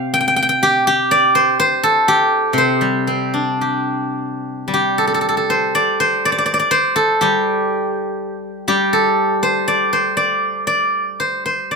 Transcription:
guzheng
Already playing: C3 C5 F5 G5
0.14 G5
0.21 G5
0.28 G5
0.36 G5
0.43 G5
0.49 G5
0.63 G4
0.87 G4
1.11 D5
1.35 C5
1.60 C5
1.83 A4
2.08 G4
2.53 C3
2.58 C5
2.81 G3
3.07 C4
3.34 D4
3.61 G4
4.68 G3
4.74 G4
4.98 A4
5.07 A4
5.14 A4
5.21 A4
5.29 A4
5.37 A4
5.50 C5
5.75 D5
6.00 C5
6.25 D5
6.32 D5
6.38 D5
6.46 D5
6.54 D5
6.59 D5
6.71 C5
6.96 A4
7.21 G3 G4
8.68 G3 G4
8.93 A4
9.43 C5
9.68 D5
9.93 C5
10.17 D5
10.67 D5
11.20 C5
11.46 C5
11.71 D5

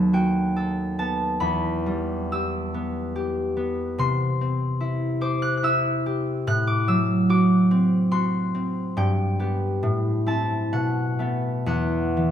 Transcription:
harp
Already playing: D#2 F#3 B3 F#4 A4 F#5 B5 D#6
0.13 F#4 G5
0.56 A4
0.99 B3 A5
1.40 E2 B5
1.86 G3
2.32 G4 E6
2.74 B3
3.16 G4
3.57 B3
3.98 C3 C6
4.41 C4
4.81 E4
5.21 C5 D6
5.42 F#6
5.57 F#6
5.63 E4 E6
6.06 G4
6.47 A2 F#6
6.67 D6
6.88 F#3 E6
7.29 F#4 D6
7.71 C4
8.12 F#4 C6
8.55 C4
8.97 G2 G5
9.39 B3 G4
9.83 A2
10.26 C4 E4 A5
10.73 B2 F#5
11.19 A3 B3
11.66 E2 F#5
12.17 E3

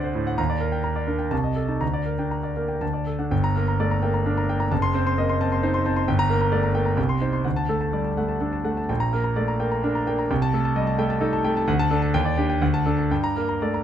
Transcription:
grand piano
Already playing: D2 D4 C5 D5 F#5 C6
0.04 C5
0.15 A2
0.27 F#5
0.38 D#2 A#5
0.50 D5
0.60 A#4
0.72 G5
0.84 A#5
0.96 D5
1.07 D4 A#4
1.19 G5
1.31 C2 A5
1.43 D#5
1.56 A4
1.68 D#4 A5
1.81 D2 A#5
1.94 D5
2.06 A#4
2.19 D4 G5
2.31 A#5
2.43 D5
2.57 A#3 A#4
2.68 G5
2.81 D2 A5
2.93 D5
3.07 A4
3.19 D4 F#5
3.31 G1 G5
3.44 A#5
3.56 A#3 A#4
3.68 A#5
3.80 A3 D5
3.91 A#5
4.03 A#3 G5
4.14 A#5
4.26 D4 A#4
4.38 A#5
4.49 A#3 G5
4.60 A#5
4.72 F#1 A5
4.82 C6
4.94 C4 C5
5.07 C6
5.18 A#3 D#5
5.29 C6
5.41 C4 A5
5.52 C6
5.63 D#4 C5
5.74 C6
5.86 C4 A5
5.96 C6
6.08 G1 G5
6.19 A#5
6.30 A#3 A#4
6.41 A#5
6.52 A3 D5
6.63 A#5
6.75 A#3 G5
6.86 A#5
6.97 C2 G5
7.09 C6
7.21 D#4 C5
7.33 C6
7.44 D2 F#5
7.56 A5
7.69 A3 A4
7.81 A5
7.93 G3 D5
8.04 A5
8.17 A3 F#5
8.28 A5
8.41 D4 A4
8.53 A5
8.64 A3 F#5
8.77 A5
8.89 A#1 G5
9.00 A#5
9.13 A#3 A#4
9.24 A#5
9.36 A3 D5
9.48 A#5
9.60 A#3 G5
9.72 A#5
9.84 D4 A#4
9.95 A#5
10.07 A#3 G5
10.19 A#5
10.31 C2 G5
10.42 A5
10.53 A3 A4
10.65 A5
10.76 G3 D#5
10.87 A5
10.98 A3 G5
11.10 A5
11.21 D#4 A4
11.33 A5
11.44 A3 G5
11.57 A5
11.68 D2 F#5
11.79 A5
11.91 D4 A4
12.02 A5
12.14 D#2 G5
12.25 D5
12.38 D4 G4
12.50 G5
12.62 D2 F#5
12.74 A5
12.86 D4 A4
12.98 A5
13.11 G2 G5
13.24 A#5
13.36 A#3 A#4
13.49 A#5
13.62 A3 D5
13.74 A#5

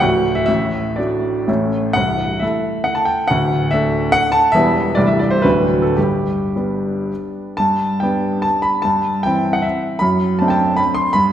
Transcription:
grand piano
0.00 D1 D2 A3 D4 F#4 F#5
0.35 E5
0.46 A1 A2 E5
0.96 A3 D4 F#4 D5
1.48 A1 A2 A3 C#4 A4
1.93 C1 C2 F#5
2.40 A3 E4 A4 E5
2.84 F#5
2.95 A5
3.05 G5
3.28 D1 D2 F#5
3.71 A3 D4 A4 E5
4.12 F#5
4.32 A5
4.52 E1 E2 G3 B3 E4 E5
4.95 C1 C2 G3 A3 E4 D5
5.07 E5
5.19 D5
5.31 C5
5.42 D1 D2 F#3 A3 D4 B4
5.82 A4
5.97 G1 G2 G4
6.56 G3 B3 D4
7.57 G2 A5
8.00 G3 B3 D4 G5
8.42 A5
8.62 B5
8.82 G2 A5
9.23 E3 C4 E4 G5
9.53 F#5
9.62 E5
9.99 F#2 B5
10.39 A3 C4 D4 A5
10.48 G5 A5
10.77 B5
10.94 C6
11.13 G2 B5

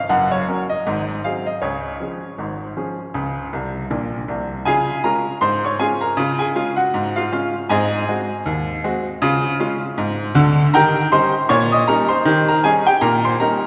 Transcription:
grand piano
Already playing: F5
0.09 F#1 F#2 F#5
0.32 C#5
0.48 F#3 C#4 A#4
0.70 D#5
0.87 G#1 G#2
1.24 F#3 C4 G#4 F5
1.46 D#5
1.62 C#2 C#3 C#5
2.00 F3 C#4 G#4
2.38 G#1 G#2
2.77 F3 C#4 G#4
3.14 C#2 C#3
3.53 C2 C3
3.90 A#1 A#2
4.28 C2 C3
4.65 C#3 F4 G#4 F5 G#5
5.04 G#3 C#4 F4 A#4 A#5
5.41 G#2 C5 C6
5.64 C#5 C#6
5.79 G#3 C#4 F4 G#4 G#5
6.01 A#4 A#5
6.17 C#3 F4
6.39 G#4 G#5
6.55 G#3 C#4 F4
6.76 F#4 F#5
6.94 G#2
7.16 F4 F5
7.32 G#3 C#4 F4
7.69 G#2 C4 G#4 D#5 G#5
8.09 G#3 C4 F#4
8.46 D#2
8.84 G#3 C4 F#4
9.22 C#3 F4
9.60 G#3 C#4 F4
9.98 G#2
10.35 D2 D3
10.74 D#3 G4 A#4 G5 A#5
11.12 G3 C#4 D#4 C5 C6
11.49 A#2 C#5 C#6
11.72 D#5 D#6
11.88 G3 C#4 D#4 A#4 A#5
12.08 C5 C6
12.25 D#3 G4
12.49 A#4 A#5
12.64 G3 C#4 D#4 G#4 G#5
12.87 G4 G5
13.01 A#2 A#4 A#5
13.25 C5 C6
13.40 G3 C#4 D#4 A#4 A#5

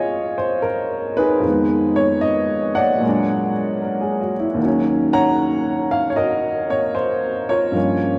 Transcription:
upright piano
Already playing: A#2 G#3 C#4 F4 G#4 C#5 D#5 F5
0.38 C5
0.62 A#4
1.17 D#4 G#4 B4
1.40 F2 D#3
1.48 G#3 B3
1.96 C#5
2.21 D#5
2.75 C#5 D5 F#5
2.98 A#2 F#3
3.03 G#3 A#3
3.09 D4
3.82 A#4
4.01 G#4
4.21 F#4
4.40 E4
4.54 D#2 D#3
4.62 F#3 C#4
5.13 C#5 F#5 A#5
5.91 F5
6.10 C#5
6.16 F#4 A#4 D#5
6.70 C#5
6.95 C5
7.49 F4 A#4 C#5
7.71 G2 F3 A#3
7.77 C#4

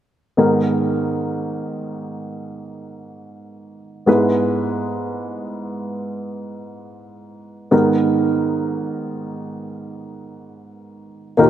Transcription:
upright piano
0.37 G#2 D#3 B3 D#4 G#4 A#4
4.06 G#2 G#3 B3 E4 G#4 B4
7.71 G#2 D#3 B3 D#4 G#4 A#4
11.37 D#2 A#2 A#3 D#4 G4 A#4

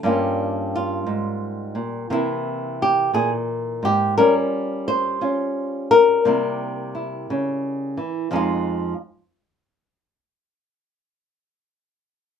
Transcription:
nylon-string guitar
0.03 G2 G3 A#3 C#4 F4
0.76 F4
1.07 G#2
1.75 A#2
2.10 C3 E3 A#3 E4
2.82 G4
3.14 A#2 G#4
3.83 G#2 G4
4.18 G3 C#4 F4 A#4
4.88 C5
5.21 C#4 F4
5.91 A#4
6.25 C3 G3 A#3 E4
6.95 E4
7.30 C#3
7.97 E3
8.31 F2 F3 G#3 D#4
8.36 F4

